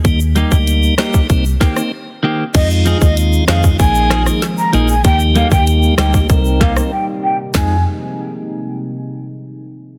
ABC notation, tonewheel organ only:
X:1
M:4/4
L:1/16
Q:1/4=96
K:Fm
V:1 name="Tonewheel organ"
[G,B,E] z2 [G,B,E]3 [G,B,E]2 [B,CE] z2 [B,CE] z4 | [A,EF]3 [A,EF]3 [A,EF]2 [B,EA]3 [B,EA] z2 [B,EA] z | [B,EG]3 [B,EG]3 [B,EG]2 [CEB]3 [CEB] z4 | [EFA]2 z12 z2 |]